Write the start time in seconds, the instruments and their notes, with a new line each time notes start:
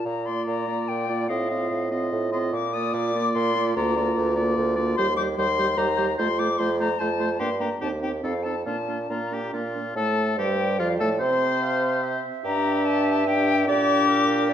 0.05 bassoon A#2, flute A#5
0.25 french horn A#3, clarinet F4, oboe D5, flute C6
0.47 bassoon A#2, flute A#5
0.67 french horn A#3, clarinet F4, oboe D5
0.88 bassoon A#2, flute G5
1.09 french horn A#3, clarinet F4, oboe D5
1.28 bassoon A2, french horn C4, clarinet F4, oboe D#5, flute F5
1.50 french horn C4, clarinet F4, oboe D#5
1.70 bassoon A2
1.91 french horn C4, clarinet F4, oboe D#5
2.12 bassoon A2
2.32 french horn C4, clarinet F4, oboe D#5, flute C6
2.52 bassoon A#2, flute D6
2.73 french horn A#3, clarinet F4, oboe D5, flute D#6
2.93 bassoon A#2, flute D6
3.14 french horn A#3, clarinet F4, oboe D5
3.34 bassoon A#2, flute C6
3.55 french horn A#3, clarinet F4, oboe D5
3.76 bassoon D2, french horn A#3, clarinet F4, oboe D5, flute A#5
3.96 french horn A#3, clarinet F4, oboe D5
4.17 bassoon D2
4.36 french horn A#3, clarinet F4, oboe D5
4.57 bassoon D2
4.76 french horn A#3, clarinet F4, oboe D5
4.96 bassoon D#2, french horn G3, clarinet G4, oboe C5, flute C6
5.16 french horn G3, clarinet G4, oboe C5, flute D6
5.37 bassoon D#2, french horn G3, clarinet G4, oboe C5, flute C6
5.56 french horn G3, clarinet G4, oboe C5
5.77 bassoon D#2, french horn G3, clarinet G4, oboe C5, flute A#5
5.97 french horn G3, clarinet G4, oboe C5
6.18 bassoon F2, french horn A3, clarinet F4, oboe C5, flute C6
6.39 french horn A3, clarinet F4, oboe C5, flute D6
6.59 bassoon F2, french horn A3, clarinet F4, oboe C5, flute C6
6.79 french horn A3, clarinet F4, oboe C5, flute A#5
6.99 bassoon F2, french horn A3, clarinet F4, oboe C5, flute A5
7.19 french horn A3, clarinet F4, oboe C5
7.39 bassoon G2, french horn A#3, clarinet D4, oboe G4, flute C6
7.60 french horn A#3, clarinet D4, oboe G4, flute A#5
7.80 bassoon D#2, french horn C4, clarinet D#4, oboe G4, flute A5
8.01 french horn C4, clarinet D#4, oboe G4, flute G5
8.22 bassoon F2, french horn C4, clarinet D#4, oboe A4, flute F5
8.43 french horn C4, clarinet D#4, oboe A4, flute A5
8.66 bassoon A#2, french horn A#3, clarinet D4, oboe F4, flute A5
8.87 french horn A#3, clarinet D4, oboe F4
9.09 bassoon A#2, french horn A#3, clarinet D4, oboe F4, flute A#5
9.30 french horn A#3, clarinet D4, oboe G4
9.52 bassoon A#2, french horn A#3, clarinet D4, oboe F4
9.74 french horn A#3, clarinet D4
9.95 bassoon A2, french horn A3, oboe A4, flute A5
10.37 bassoon G2, french horn G3, oboe G4, clarinet C5, flute G5
10.79 bassoon F2, french horn F3, oboe F4, clarinet D5, flute F5
10.98 bassoon A2, french horn A3, oboe A4, flute A5
11.20 bassoon C3, french horn C4, oboe C5, clarinet C5, flute C6
11.62 clarinet F5
12.02 clarinet E5
12.44 bassoon G2, french horn D4, oboe G4, flute A#5
12.85 flute A5
13.27 french horn D4, oboe G4, flute G5
13.67 bassoon A#2, french horn D4, oboe G4, clarinet D5, flute D6
14.08 clarinet A#4
14.49 clarinet D5